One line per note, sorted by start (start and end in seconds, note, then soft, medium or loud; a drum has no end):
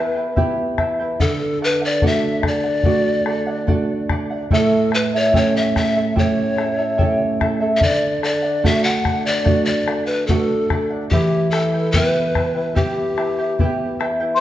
0.00 1.17 E3 medium
0.00 0.35 B3 soft
0.00 0.16 E4 medium
0.00 0.35 E4 soft
0.00 0.35 G4 medium
0.00 0.15 B4 medium
0.00 0.39 B4 medium
0.00 0.16 E5 medium
0.00 0.14 G5 medium
0.15 0.36 E4 soft
0.15 0.36 B4 soft
0.15 0.36 G5 soft
0.36 1.18 B3 soft
0.36 0.78 E4 medium
0.36 1.18 E4 soft
0.36 0.79 G4 medium
0.36 1.18 G4 medium
0.36 0.79 B4 medium
0.36 0.77 E5 medium
0.36 0.79 G5 medium
0.36 bombo low medium
0.78 1.00 E4 medium
0.78 0.99 B4 medium
0.78 0.99 E5 medium
0.78 0.98 G5 medium
0.78 bombo rim medium
0.78 bombo low soft
0.99 1.21 E4 soft
0.99 1.20 B4 soft
0.99 1.20 G5 soft
1.20 4.47 D3 medium
1.20 1.60 A4 medium
1.20 1.59 A4 medium
1.20 1.61 D5 medium
1.20 1.61 F#5 medium
1.20 bombo low medium
1.61 1.82 A4 medium
1.61 1.82 B4 medium
1.61 1.82 D5 medium
1.61 1.80 F#5 medium
1.82 2.02 D5 soft
1.82 2.08 D5 medium
1.82 2.02 F#5 soft
2.02 2.83 A3 soft
2.02 2.83 D4 soft
2.02 2.84 F#4 soft
2.02 2.41 A4 medium
2.02 2.42 D5 medium
2.02 2.42 F#5 medium
2.02 bombo low medium
2.07 2.46 E5 medium
2.42 2.64 A4 medium
2.42 2.63 D5 medium
2.42 2.63 F#5 medium
2.42 bombo rim medium
2.42 bombo low medium
2.47 4.07 D5 loud
2.64 2.84 D5 soft
2.64 2.85 F#5 soft
2.84 3.66 A3 soft
2.84 3.66 D4 soft
2.84 3.66 F#4 soft
2.84 3.25 A4 medium
2.84 3.26 D5 medium
2.84 3.26 F#5 medium
2.84 bombo low medium
3.26 3.47 A4 medium
3.26 3.47 D5 medium
3.26 3.45 F#5 medium
3.26 bombo rim medium
3.47 3.67 D5 soft
3.47 3.67 F#5 medium
3.67 4.48 A3 soft
3.67 4.48 D4 soft
3.67 4.48 F#4 medium
3.67 4.08 A4 medium
3.67 4.09 D5 medium
3.67 4.09 F#5 medium
3.67 bombo low medium
4.09 4.30 A4 medium
4.09 4.31 D5 medium
4.09 4.29 F#5 medium
4.09 bombo rim medium
4.09 bombo low medium
4.30 4.52 D5 soft
4.30 4.51 F#5 medium
4.51 7.78 A2 medium
4.51 4.91 E4 medium
4.51 4.91 A4 medium
4.51 4.92 C#5 medium
4.51 4.91 E5 medium
4.51 4.90 G5 medium
4.51 bombo low medium
4.91 5.13 E4 medium
4.91 5.13 A4 medium
4.91 5.13 B4 medium
4.91 5.12 E5 medium
4.91 5.12 G5 medium
4.91 bombo rim soft
5.14 5.34 E4 soft
5.14 5.33 A4 soft
5.14 5.34 C#5 medium
5.14 5.33 E5 medium
5.34 6.14 A3 soft
5.34 6.14 C#4 soft
5.34 5.75 E4 medium
5.34 6.14 G4 medium
5.34 5.75 A4 medium
5.34 5.75 C#5 medium
5.34 5.58 C#5 medium
5.34 5.75 E5 medium
5.34 5.74 G5 medium
5.34 bombo low medium
5.56 5.76 E5 medium
5.75 5.96 E4 medium
5.75 5.95 A4 medium
5.75 5.95 E5 medium
5.75 6.14 E5 medium
5.75 5.96 G5 medium
5.75 bombo rim medium
5.75 bombo low medium
5.96 6.15 E4 soft
5.96 6.15 A4 soft
5.96 6.15 E5 soft
6.16 6.96 A3 soft
6.16 6.96 C#4 soft
6.16 6.56 E4 medium
6.16 6.97 G4 soft
6.16 6.56 A4 medium
6.16 6.57 C#5 medium
6.16 7.38 C#5 medium
6.16 6.57 E5 medium
6.16 6.56 G5 medium
6.16 bombo low medium
6.57 6.78 E4 medium
6.57 6.77 A4 medium
6.57 6.77 E5 medium
6.57 6.78 G5 medium
6.57 bombo rim soft
6.78 6.97 E4 soft
6.78 6.97 A4 soft
6.78 6.97 E5 medium
6.98 7.80 A3 soft
6.98 7.80 C#4 soft
6.98 7.40 E4 medium
6.98 7.80 G4 medium
6.98 7.40 A4 medium
6.98 7.40 C#5 medium
6.98 7.40 E5 medium
6.98 7.39 G5 medium
6.98 bombo low medium
7.40 7.61 E4 medium
7.40 7.60 A4 medium
7.40 7.59 E5 medium
7.40 7.61 G5 medium
7.40 bombo rim medium
7.40 bombo low medium
7.60 7.82 E4 soft
7.60 7.80 A4 soft
7.60 7.81 E5 soft
7.77 7.84 E5 medium
7.81 11.08 D3 medium
7.81 8.21 A4 medium
7.81 8.22 D5 medium
7.81 8.23 D5 loud
7.81 8.23 F#5 medium
7.81 bombo low medium
8.22 8.43 A4 medium
8.22 8.43 D5 medium
8.22 8.67 D5 medium
8.22 8.41 F#5 medium
8.22 bombo rim soft
8.42 8.63 D5 soft
8.42 8.63 F#5 medium
8.63 9.44 A3 soft
8.63 9.44 D4 soft
8.63 9.45 F#4 medium
8.63 9.04 A4 medium
8.63 9.04 D5 medium
8.63 8.85 E5 medium
8.63 9.05 F#5 medium
8.63 bombo low medium
8.84 9.26 F#5 medium
9.05 9.25 A4 medium
9.05 9.25 D5 medium
9.05 9.23 F#5 medium
9.05 bombo rim medium
9.05 bombo low medium
9.24 9.44 D5 soft
9.24 9.65 D5 medium
9.24 9.44 F#5 soft
9.44 10.26 A3 soft
9.44 10.27 D4 soft
9.44 10.27 F#4 soft
9.44 9.85 A4 medium
9.44 9.86 D5 medium
9.44 9.87 F#5 medium
9.44 bombo low medium
9.65 10.05 D5 medium
9.86 10.08 A4 medium
9.86 10.08 D5 medium
9.86 10.06 F#5 medium
9.86 bombo rim medium
10.06 10.28 B4 medium
10.06 10.29 D5 soft
10.06 10.29 F#5 medium
10.27 11.10 A3 medium
10.27 11.09 D4 soft
10.27 11.10 F#4 medium
10.27 10.90 A4 medium
10.27 10.69 A4 medium
10.27 10.70 D5 medium
10.27 bombo low medium
10.31 10.71 F#5 medium
10.70 10.91 A4 medium
10.70 10.91 D5 medium
10.70 10.89 F#5 medium
10.70 bombo rim medium
10.70 bombo low medium
10.91 11.13 D5 soft
10.91 11.12 F#5 medium
11.10 14.38 E3 medium
11.10 11.52 E4 medium
11.10 11.50 G4 medium
11.10 11.54 G4 medium
11.10 11.53 B4 medium
11.10 11.52 E5 medium
11.10 11.53 G5 medium
11.10 bombo low medium
11.51 11.74 E4 medium
11.51 11.94 A4 medium
11.51 11.73 B4 medium
11.51 11.74 E5 medium
11.51 11.73 G5 medium
11.51 bombo rim medium
11.74 11.95 E4 soft
11.74 11.94 B4 soft
11.74 11.95 G5 soft
11.92 12.75 B3 soft
11.92 12.75 E4 soft
11.92 12.75 G4 medium
11.92 12.37 G4 medium
11.92 12.75 B4 medium
11.92 12.35 B4 medium
11.92 12.34 E5 medium
11.92 bombo low medium
11.96 12.34 E4 medium
11.96 12.35 G5 medium
12.35 12.55 E4 medium
12.35 12.54 B4 medium
12.35 12.56 E5 medium
12.35 12.54 G5 medium
12.35 bombo rim medium
12.35 bombo low medium
12.55 12.74 E4 soft
12.55 12.74 B4 soft
12.55 12.75 G5 soft
12.75 13.57 B3 soft
12.75 13.16 E4 medium
12.75 13.57 E4 soft
12.75 13.17 G4 medium
12.75 13.97 G4 medium
12.75 13.57 G4 soft
12.75 13.17 B4 medium
12.75 13.16 E5 medium
12.75 13.17 G5 medium
12.75 bombo low medium
13.17 13.39 E4 medium
13.17 13.39 B4 medium
13.17 13.39 E5 soft
13.17 13.37 G5 medium
13.17 bombo rim medium
13.38 13.59 E4 soft
13.38 13.59 B4 soft
13.38 13.60 G5 soft
13.59 14.40 B3 soft
13.59 13.99 E4 medium
13.59 14.40 E4 soft
13.59 14.01 G4 medium
13.59 14.40 G4 medium
13.59 14.00 B4 medium
13.59 13.98 E5 medium
13.59 14.01 G5 medium
13.59 bombo low medium
14.00 14.20 E4 medium
14.00 14.20 B4 medium
14.00 14.21 E5 medium
14.00 14.19 G5 medium
14.00 bombo rim medium
14.20 14.40 E4 soft
14.20 14.40 B4 soft
14.20 14.40 G5 medium
14.35 14.40 C5 medium
14.35 14.40 C6 medium